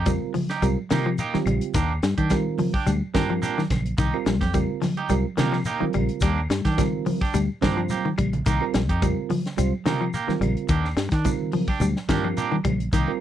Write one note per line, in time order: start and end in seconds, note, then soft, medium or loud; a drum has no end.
0.00 0.17 F2 medium
0.06 0.22 G3 medium
0.06 0.33 G3 medium
0.06 0.33 C4 medium
0.06 0.33 F4 medium
0.06 0.34 A#4 medium
0.06 kick medium
0.06 closed hi-hat medium
0.06 high conga medium
0.06 low conga medium
0.06 claves medium
0.06 shekere medium
0.34 0.50 F3 medium
0.34 open hi-hat medium
0.34 high conga medium
0.34 low conga medium
0.34 shekere soft
0.49 0.66 D#4 soft
0.49 0.65 G4 medium
0.49 snare soft
0.49 closed hi-hat soft
0.62 0.75 C2 medium
0.62 0.78 G3 medium
0.62 0.77 G3 medium
0.62 0.77 C4 medium
0.62 0.77 F4 medium
0.62 0.77 A#4 medium
0.62 closed hi-hat medium
0.62 high conga medium
0.62 claves medium
0.62 shekere medium
0.90 1.15 C3 medium
0.90 0.99 D#3 medium
0.90 1.11 G3 medium
0.90 1.08 A#3 medium
0.90 1.11 C4 medium
0.90 1.08 D#4 medium
0.90 1.12 F4 medium
0.90 1.09 G4 medium
0.90 1.12 A#4 medium
0.90 snare medium
0.90 closed hi-hat soft
0.90 high conga medium
0.90 shekere soft
1.04 1.21 F3 medium
1.04 claves medium
1.18 1.36 A#3 medium
1.18 1.37 D#4 medium
1.18 1.37 G4 medium
1.18 closed hi-hat medium
1.18 shekere medium
1.34 1.41 D#3 medium
1.34 1.74 G3 medium
1.34 1.75 C4 medium
1.34 1.75 F4 medium
1.34 1.75 G4 medium
1.34 muted fingered electric bass stroke soft
1.34 snare soft
1.34 high conga medium
1.46 1.59 A#1 medium
1.46 1.62 G3 medium
1.46 closed hi-hat medium
1.46 low conga medium
1.46 claves medium
1.46 shekere soft
1.61 closed hi-hat medium
1.74 1.99 D#2 loud
1.74 1.90 D#3 medium
1.74 1.92 A#3 medium
1.74 1.92 D4 medium
1.74 1.93 G4 medium
1.74 kick loud
1.74 closed hi-hat medium
1.74 shekere medium
1.89 claves medium
2.03 2.16 G2 medium
2.03 2.19 G3 medium
2.03 snare medium
2.03 closed hi-hat medium
2.03 shekere soft
2.18 2.66 D#3 medium
2.18 2.34 D4 soft
2.18 2.33 G4 medium
2.18 kick medium
2.18 closed hi-hat soft
2.18 high conga medium
2.30 2.72 G3 medium
2.30 2.46 G3 medium
2.30 2.72 C4 medium
2.30 2.72 F4 medium
2.30 2.72 A#4 medium
2.30 kick medium
2.30 snare soft
2.30 closed hi-hat medium
2.30 high conga medium
2.30 claves medium
2.30 shekere medium
2.58 2.74 F3 medium
2.58 open hi-hat medium
2.58 high conga medium
2.58 low conga medium
2.58 shekere soft
2.74 2.90 D4 soft
2.74 2.89 G4 medium
2.74 muted fingered electric bass stroke soft
2.74 kick medium
2.86 3.00 D2 loud
2.86 3.02 G3 medium
2.86 closed hi-hat medium
2.86 high conga medium
2.86 claves medium
2.86 shekere medium
3.14 3.38 G2 medium
3.14 3.23 D#3 medium
3.14 3.62 G3 medium
3.14 3.32 A#3 medium
3.14 3.62 C4 medium
3.14 3.32 D4 medium
3.14 3.62 F4 medium
3.14 3.32 G4 medium
3.14 3.62 A#4 medium
3.14 kick medium
3.14 snare medium
3.14 closed hi-hat medium
3.14 high conga medium
3.14 shekere soft
3.30 3.45 F3 medium
3.30 claves medium
3.42 3.60 A#3 medium
3.42 3.60 D4 medium
3.42 3.60 G4 medium
3.42 closed hi-hat medium
3.42 shekere medium
3.58 3.65 D#3 medium
3.58 snare soft
3.58 high conga medium
3.70 3.94 A#1 medium
3.70 kick medium
3.70 snare soft
3.70 closed hi-hat medium
3.70 high conga medium
3.70 low conga medium
3.70 claves medium
3.70 shekere soft
3.86 closed hi-hat soft
3.98 4.11 C2 loud
3.98 4.14 D#3 medium
3.98 4.16 D#4 medium
3.98 4.16 G4 medium
3.98 muted clean electric guitar stroke medium
3.98 kick loud
3.98 closed hi-hat medium
3.98 shekere medium
4.13 4.33 G3 medium
4.13 4.33 C4 medium
4.13 4.33 F4 medium
4.13 4.33 A#4 medium
4.13 claves medium
4.26 4.41 A#1 medium
4.26 4.42 G3 medium
4.26 snare medium
4.26 closed hi-hat medium
4.26 shekere soft
4.41 4.65 F2 medium
4.41 4.57 G4 medium
4.41 muted clean electric guitar stroke soft
4.41 kick medium
4.41 snare soft
4.41 closed hi-hat soft
4.41 high conga medium
4.54 4.70 G3 medium
4.54 4.81 G3 medium
4.54 4.81 C4 medium
4.54 4.81 F4 medium
4.54 4.81 A#4 medium
4.54 kick medium
4.54 closed hi-hat medium
4.54 high conga medium
4.54 low conga medium
4.54 claves medium
4.54 shekere medium
4.82 4.97 F3 medium
4.82 snare soft
4.82 open hi-hat medium
4.82 high conga medium
4.82 low conga medium
4.82 shekere soft
4.97 5.14 D#4 soft
4.97 5.13 G4 medium
4.97 closed hi-hat medium
5.09 5.23 C2 medium
5.09 5.25 G3 medium
5.09 5.25 C4 medium
5.09 5.25 F4 medium
5.09 5.25 A#4 loud
5.09 closed hi-hat medium
5.09 high conga medium
5.09 claves medium
5.09 shekere medium
5.37 5.62 C3 medium
5.37 5.46 D#3 medium
5.37 5.59 G3 medium
5.37 5.56 A#3 medium
5.37 5.59 C4 medium
5.37 5.56 D#4 medium
5.37 5.59 F4 medium
5.37 5.56 G4 medium
5.37 5.59 A#4 medium
5.37 snare medium
5.37 closed hi-hat medium
5.37 high conga medium
5.37 low conga medium
5.37 shekere soft
5.52 5.68 F3 medium
5.52 snare soft
5.52 claves medium
5.65 5.84 A#3 medium
5.65 5.84 D#4 medium
5.65 5.84 G4 medium
5.65 closed hi-hat medium
5.65 shekere medium
5.80 5.88 D#3 medium
5.80 6.22 G3 medium
5.80 6.22 C4 medium
5.80 6.22 F4 medium
5.80 6.22 A#4 medium
5.80 muted fingered electric bass stroke soft
5.80 high conga medium
5.93 6.08 A#1 medium
5.93 6.10 G3 medium
5.93 closed hi-hat soft
5.93 low conga medium
5.93 claves medium
5.93 shekere soft
6.09 closed hi-hat soft
6.21 6.46 D#2 medium
6.21 6.38 G3 medium
6.21 6.40 A#3 medium
6.21 6.40 D4 medium
6.21 6.40 G4 medium
6.21 kick loud
6.21 closed hi-hat medium
6.21 shekere medium
6.38 claves medium
6.50 6.63 G2 medium
6.50 6.66 G3 medium
6.50 snare medium
6.50 closed hi-hat medium
6.50 shekere soft
6.65 7.13 D#3 medium
6.65 6.81 D4 soft
6.65 6.81 G4 medium
6.65 kick medium
6.65 snare soft
6.65 closed hi-hat medium
6.65 high conga medium
6.77 7.19 G3 medium
6.77 6.94 G3 medium
6.77 7.19 C4 medium
6.77 7.19 F4 medium
6.77 7.19 A#4 medium
6.77 kick medium
6.77 snare soft
6.77 closed hi-hat medium
6.77 high conga medium
6.77 low conga medium
6.77 claves medium
6.77 shekere medium
7.06 7.22 F3 medium
7.06 open hi-hat medium
7.06 high conga medium
7.06 low conga medium
7.06 shekere soft
7.21 7.38 D4 soft
7.21 7.37 G4 medium
7.21 muted fingered electric bass stroke soft
7.21 kick medium
7.34 7.47 D2 loud
7.34 7.49 G3 medium
7.34 closed hi-hat medium
7.34 claves medium
7.34 shekere medium
7.61 7.86 G2 medium
7.61 7.70 D#3 medium
7.61 8.10 G3 medium
7.61 7.80 A#3 medium
7.61 8.09 C4 medium
7.61 7.80 D4 medium
7.61 8.10 F4 medium
7.61 7.80 G4 medium
7.61 8.10 C5 medium
7.61 kick medium
7.61 snare medium
7.61 closed hi-hat medium
7.61 high conga medium
7.61 low conga medium
7.61 shekere soft
7.77 7.92 F3 medium
7.77 claves medium
7.89 8.08 A#3 medium
7.89 8.08 G4 medium
7.89 muted clean electric guitar stroke medium
7.89 closed hi-hat medium
7.89 high conga medium
7.89 shekere medium
8.05 8.12 D#3 medium
8.05 high conga medium
8.18 8.42 A#1 medium
8.18 8.33 G3 medium
8.18 kick medium
8.18 closed hi-hat soft
8.18 low conga medium
8.18 claves medium
8.18 shekere soft
8.33 closed hi-hat medium
8.33 low conga medium
8.46 8.59 C2 medium
8.46 8.62 D#3 medium
8.46 8.64 A#3 medium
8.46 8.64 D#4 medium
8.46 8.64 G4 medium
8.46 kick loud
8.46 closed hi-hat medium
8.46 shekere medium
8.60 8.80 G3 medium
8.60 8.80 C4 medium
8.60 8.81 F4 medium
8.60 8.81 A#4 medium
8.60 claves medium
8.74 8.89 A#1 medium
8.74 8.90 G3 medium
8.74 snare medium
8.74 closed hi-hat medium
8.74 shekere soft
8.89 9.13 F2 medium
8.89 9.06 D#4 soft
8.89 9.05 G4 soft
8.89 kick medium
8.89 closed hi-hat medium
9.02 9.18 G3 medium
9.02 9.29 G3 medium
9.02 9.29 C4 medium
9.02 9.29 F4 medium
9.02 9.29 A#4 medium
9.02 kick medium
9.02 closed hi-hat medium
9.02 high conga medium
9.02 low conga medium
9.02 claves medium
9.02 shekere medium
9.30 9.46 F3 medium
9.30 open hi-hat medium
9.30 high conga medium
9.30 low conga medium
9.30 shekere soft
9.46 snare soft
9.46 closed hi-hat medium
9.57 9.71 C2 loud
9.57 9.72 G3 medium
9.57 9.73 G3 medium
9.57 9.72 C4 medium
9.57 9.72 F4 medium
9.57 9.72 C5 medium
9.57 closed hi-hat medium
9.57 high conga medium
9.57 claves medium
9.57 shekere medium
9.86 10.10 C3 medium
9.86 9.94 D#3 medium
9.86 10.06 G3 medium
9.86 10.03 A#3 medium
9.86 10.06 C4 medium
9.86 10.04 D#4 medium
9.86 10.07 F4 medium
9.86 10.04 G4 medium
9.86 10.07 A#4 medium
9.86 snare medium
9.86 closed hi-hat soft
9.86 high conga loud
9.86 low conga medium
9.86 shekere soft
10.01 10.16 F3 medium
10.01 claves medium
10.14 10.31 A#3 medium
10.14 10.32 G4 medium
10.14 closed hi-hat medium
10.14 shekere medium
10.28 10.35 D#3 medium
10.28 10.69 G3 medium
10.28 10.69 C4 medium
10.28 10.70 F4 medium
10.28 10.70 A#4 medium
10.28 muted fingered electric bass stroke soft
10.28 snare soft
10.28 high conga medium
10.41 10.54 A#1 medium
10.41 10.57 G3 medium
10.41 closed hi-hat soft
10.41 low conga medium
10.41 claves medium
10.41 shekere soft
10.57 closed hi-hat soft
10.69 10.93 D#2 medium
10.69 10.84 D#3 medium
10.69 10.87 A#3 medium
10.69 10.87 D4 medium
10.69 10.88 G4 medium
10.69 kick loud
10.69 closed hi-hat medium
10.69 shekere medium
10.85 snare soft
10.85 claves medium
10.96 11.10 G2 medium
10.96 11.12 G3 medium
10.96 snare medium
10.96 closed hi-hat soft
10.96 shekere soft
11.11 11.60 D#3 medium
11.11 11.29 D4 soft
11.11 muted clean electric guitar stroke medium
11.11 kick medium
11.11 snare soft
11.11 closed hi-hat soft
11.24 11.41 D#3 medium
11.24 11.66 G3 medium
11.24 11.67 C4 medium
11.24 11.67 F4 medium
11.24 11.67 A#4 medium
11.24 kick medium
11.24 closed hi-hat medium
11.24 high conga medium
11.24 low conga medium
11.24 claves medium
11.24 shekere medium
11.52 11.69 F3 medium
11.52 open hi-hat medium
11.52 high conga medium
11.52 low conga medium
11.52 shekere soft
11.67 11.85 D4 soft
11.67 11.84 G4 medium
11.67 muted fingered electric bass stroke soft
11.67 kick medium
11.80 11.93 D2 loud
11.80 11.97 G3 medium
11.80 closed hi-hat medium
11.80 high conga medium
11.80 claves medium
11.80 shekere medium
11.96 snare soft
12.08 12.33 G2 medium
12.08 12.18 D#3 medium
12.08 12.57 G3 medium
12.08 12.27 A#3 medium
12.08 12.57 C4 medium
12.08 12.27 D4 medium
12.08 12.57 F4 medium
12.08 12.27 G4 medium
12.08 12.57 A#4 medium
12.08 kick medium
12.08 snare medium
12.08 closed hi-hat medium
12.08 high conga medium
12.08 shekere soft
12.24 12.40 F3 medium
12.24 claves medium
12.37 12.55 A#3 medium
12.37 12.55 D4 medium
12.37 12.55 G4 medium
12.37 closed hi-hat medium
12.37 shekere medium
12.52 12.59 D#3 medium
12.52 high conga medium
12.64 12.89 A#1 medium
12.64 12.80 G3 medium
12.64 kick medium
12.64 closed hi-hat medium
12.64 high conga medium
12.64 low conga medium
12.64 claves medium
12.64 shekere soft
12.80 closed hi-hat soft
12.93 13.06 C2 medium
12.93 13.08 D#3 medium
12.93 13.10 A#3 medium
12.93 13.11 D#4 medium
12.93 13.11 G4 medium
12.93 kick medium
12.93 closed hi-hat medium
12.93 shekere medium
13.07 13.20 G3 medium
13.07 13.20 C4 medium
13.07 13.20 F4 medium
13.07 13.20 A#4 medium
13.07 claves medium